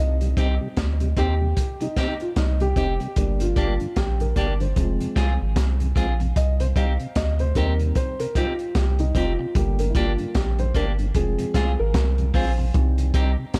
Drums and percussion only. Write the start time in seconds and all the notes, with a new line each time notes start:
0.21 closed hi-hat
0.37 kick, closed hi-hat
0.77 kick, snare, closed hi-hat
1.00 closed hi-hat
1.17 kick, closed hi-hat
1.57 kick, closed hi-hat
1.81 closed hi-hat
1.97 kick, snare, closed hi-hat
2.20 closed hi-hat
2.36 kick, snare, closed hi-hat
2.60 closed hi-hat
2.76 kick, closed hi-hat
3.00 closed hi-hat
3.16 kick, closed hi-hat
3.40 closed hi-hat
3.56 kick, closed hi-hat
3.80 closed hi-hat
3.96 kick, snare, closed hi-hat
4.20 closed hi-hat
4.36 kick, closed hi-hat
4.60 closed hi-hat
4.76 kick, closed hi-hat
5.01 closed hi-hat
5.16 kick, snare, closed hi-hat
5.56 kick, snare, closed hi-hat
5.80 closed hi-hat
5.96 kick, closed hi-hat
6.20 closed hi-hat
6.36 kick, closed hi-hat
6.60 closed hi-hat
6.76 kick, closed hi-hat
7.00 closed hi-hat
7.15 kick, snare, closed hi-hat
7.39 closed hi-hat
7.55 kick, closed hi-hat
7.79 closed hi-hat
7.95 kick, closed hi-hat
8.20 closed hi-hat
8.35 kick, closed hi-hat
8.59 closed hi-hat
8.75 kick, snare, closed hi-hat
8.99 closed hi-hat
9.15 kick, closed hi-hat
9.55 kick, closed hi-hat
9.79 closed hi-hat
9.95 kick, closed hi-hat
10.18 closed hi-hat
10.35 kick, snare, closed hi-hat
10.59 closed hi-hat
10.75 kick, closed hi-hat
10.99 closed hi-hat
11.15 kick, closed hi-hat
11.39 closed hi-hat
11.54 kick, snare, closed hi-hat
11.94 kick, snare, closed hi-hat
12.18 closed hi-hat
12.34 kick, open hi-hat
12.74 kick, closed hi-hat
12.98 closed hi-hat
13.14 kick, closed hi-hat
13.54 kick, snare, closed hi-hat